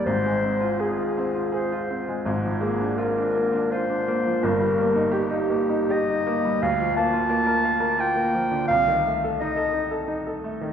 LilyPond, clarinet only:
\new Staff \with { instrumentName = "Clarinet" } { \time 3/4 \key ees \major \tempo 4 = 84 c''4 aes'4 c''4 | r8 aes'8 bes'4 c''4 | bes'4 g'4 ees''4 | \key bes \major f''8 a''4. g''4 |
f''8 r8 ees''4 r4 | }